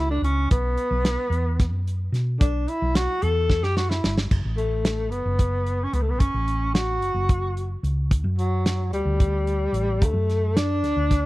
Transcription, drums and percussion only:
0.24 closed hi-hat medium
0.51 kick loud
0.51 closed hi-hat medium
0.78 closed hi-hat medium
1.05 snare loud
1.05 closed hi-hat medium
1.32 closed hi-hat medium
1.60 kick loud
1.60 snare soft
1.60 closed hi-hat medium
1.87 closed hi-hat medium
2.14 snare soft
2.14 closed hi-hat medium
2.41 kick loud
2.41 closed hi-hat medium
2.68 closed hi-hat medium
2.95 snare loud
2.95 closed hi-hat medium
3.22 closed hi-hat medium
3.50 kick medium
3.50 snare medium
3.63 snare medium
3.77 snare medium
3.91 snare medium
4.04 snare medium
4.18 snare medium
4.31 kick loud
4.31 crash medium
4.58 closed hi-hat medium
4.85 snare loud
4.85 closed hi-hat medium
5.12 closed hi-hat medium
5.39 kick medium
5.39 closed hi-hat medium
5.66 closed hi-hat medium
5.94 closed hi-hat medium
6.20 kick loud
6.20 closed hi-hat medium
6.48 closed hi-hat medium
6.75 snare loud
6.75 closed hi-hat medium
7.02 closed hi-hat medium
7.29 kick loud
7.29 closed hi-hat medium
7.57 closed hi-hat medium
7.84 closed hi-hat medium
8.11 kick loud
8.11 closed hi-hat medium
8.39 closed hi-hat medium
8.66 snare loud
8.66 closed hi-hat medium
8.93 closed hi-hat medium
9.20 kick loud
9.20 closed hi-hat medium
9.47 closed hi-hat medium
9.74 closed hi-hat medium
10.02 kick loud
10.02 closed hi-hat medium
10.30 snare soft
10.30 closed hi-hat soft
10.57 snare loud
10.57 closed hi-hat medium
10.84 snare soft
10.84 closed hi-hat medium
11.11 kick medium
11.11 snare soft
11.11 closed hi-hat medium

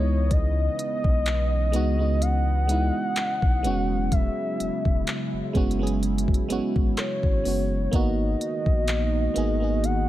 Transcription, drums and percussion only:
0.31 kick loud
0.31 closed hi-hat medium
0.79 closed hi-hat medium
1.04 kick loud
1.26 clap loud
1.26 closed hi-hat medium
1.73 closed hi-hat medium
2.22 closed hi-hat medium
2.69 closed hi-hat medium
3.16 clap loud
3.16 closed hi-hat medium
3.42 kick medium
3.64 closed hi-hat medium
4.12 kick loud
4.12 closed hi-hat medium
4.60 closed hi-hat medium
4.85 kick medium
5.07 clap loud
5.07 closed hi-hat medium
5.55 kick medium
5.55 closed hi-hat soft
5.71 closed hi-hat soft
5.87 closed hi-hat soft
6.03 closed hi-hat medium
6.18 closed hi-hat medium
6.28 kick medium
6.34 closed hi-hat medium
6.50 closed hi-hat medium
6.76 kick loud
6.97 cross-stick loud
6.97 clap loud
6.97 closed hi-hat medium
7.23 kick medium
7.45 open hi-hat medium
7.93 kick loud
7.93 closed hi-hat medium
8.41 closed hi-hat medium
8.66 kick loud
8.88 clap loud
8.88 closed hi-hat medium
9.36 closed hi-hat medium
9.84 closed hi-hat medium

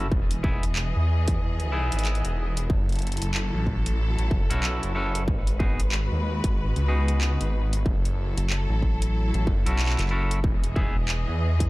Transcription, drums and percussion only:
0.12 kick loud
0.31 closed hi-hat medium
0.44 kick loud
0.63 closed hi-hat medium
0.76 clap loud
1.28 kick loud
1.28 closed hi-hat medium
1.60 closed hi-hat soft
1.92 closed hi-hat medium
1.99 closed hi-hat medium
2.05 clap loud
2.05 closed hi-hat soft
2.15 closed hi-hat soft
2.25 closed hi-hat medium
2.57 closed hi-hat medium
2.70 kick loud
2.89 closed hi-hat soft
2.92 closed hi-hat soft
2.95 closed hi-hat soft
2.99 closed hi-hat soft
3.02 closed hi-hat soft
3.07 closed hi-hat soft
3.12 closed hi-hat soft
3.17 closed hi-hat soft
3.22 closed hi-hat medium
3.34 clap loud
3.67 kick medium
3.86 closed hi-hat medium
4.19 closed hi-hat soft
4.31 kick loud
4.51 closed hi-hat medium
4.63 clap loud
4.83 closed hi-hat medium
5.15 closed hi-hat medium
5.28 kick loud
5.47 closed hi-hat medium
5.60 kick loud
5.80 closed hi-hat medium
5.92 clap loud
6.44 kick loud
6.44 closed hi-hat medium
6.76 closed hi-hat soft
7.08 closed hi-hat medium
7.21 clap loud
7.41 closed hi-hat soft
7.73 closed hi-hat medium
7.86 kick loud
8.05 closed hi-hat medium
8.38 closed hi-hat medium
8.50 clap loud
8.82 kick medium
9.02 closed hi-hat medium
9.34 closed hi-hat soft
9.47 kick loud
9.66 closed hi-hat medium
9.79 clap loud
9.86 clap medium
9.90 clap medium
9.99 clap medium
9.99 closed hi-hat medium
10.01 clap medium
10.08 clap soft
10.31 closed hi-hat medium
10.44 kick loud
10.64 closed hi-hat medium
10.76 kick loud
11.08 clap loud
11.60 kick loud
11.60 closed hi-hat medium

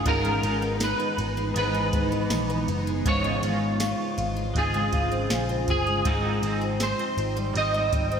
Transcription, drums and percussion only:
0.06 kick loud
0.06 ride medium
0.43 ride soft
0.80 snare loud
0.80 ride medium
0.80 tambourine medium
1.19 ride soft
1.56 ride medium
1.93 kick medium
1.93 ride soft
2.30 snare loud
2.30 ride medium
2.30 tambourine medium
2.68 ride soft
3.06 kick loud
3.06 ride soft
3.43 ride soft
3.80 snare loud
3.80 ride medium
3.80 tambourine medium
4.19 ride soft
4.55 kick medium
4.55 ride medium
4.93 kick medium
4.93 ride soft
5.30 snare loud
5.30 ride medium
5.30 tambourine medium
5.68 kick medium
5.68 ride soft
6.05 kick loud
6.05 ride soft
6.43 ride soft
6.80 snare loud
6.80 ride medium
6.80 tambourine medium
7.18 ride soft
7.55 ride medium
7.93 kick medium
7.93 ride soft

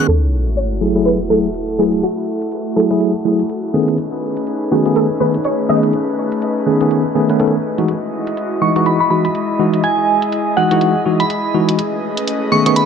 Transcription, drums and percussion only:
0.08 closed hi-hat soft
0.47 closed hi-hat medium
0.57 closed hi-hat soft
0.95 closed hi-hat medium
1.05 closed hi-hat medium
1.44 closed hi-hat medium
1.54 closed hi-hat soft
1.93 closed hi-hat medium
2.03 closed hi-hat soft
2.42 closed hi-hat medium
2.52 closed hi-hat soft
2.91 closed hi-hat medium
3.01 closed hi-hat soft
3.39 closed hi-hat medium
3.49 closed hi-hat soft
3.88 closed hi-hat medium
3.98 closed hi-hat soft
4.37 closed hi-hat medium
4.47 closed hi-hat soft
4.86 closed hi-hat medium
4.96 closed hi-hat medium
5.34 closed hi-hat medium
5.44 closed hi-hat soft
5.83 closed hi-hat medium
5.93 closed hi-hat soft
6.32 closed hi-hat medium
6.42 closed hi-hat soft
6.81 closed hi-hat medium
6.91 closed hi-hat soft
7.30 closed hi-hat medium
7.40 closed hi-hat soft
7.78 closed hi-hat medium
7.88 closed hi-hat soft
8.27 closed hi-hat medium
8.37 closed hi-hat soft
8.76 closed hi-hat medium
8.86 closed hi-hat soft
9.25 closed hi-hat medium
9.35 closed hi-hat soft
9.74 closed hi-hat medium
9.84 closed hi-hat soft
10.22 closed hi-hat medium
10.32 closed hi-hat soft
10.71 closed hi-hat medium
10.81 closed hi-hat medium
11.20 closed hi-hat medium
11.30 closed hi-hat soft
11.69 closed hi-hat medium
11.79 closed hi-hat soft
12.17 closed hi-hat medium
12.28 closed hi-hat soft
12.66 closed hi-hat medium
12.76 closed hi-hat medium

